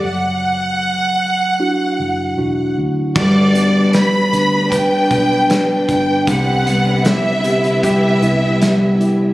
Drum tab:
CC |----------------|x---------------|----------------|
HH |----------------|--x-x-x-x-x-x-x-|x-x-x-xxx-x-x-x-|
SD |----------------|----o-------o---|----o-------o---|
BD |----------------|o-------o-o---o-|o-------o-------|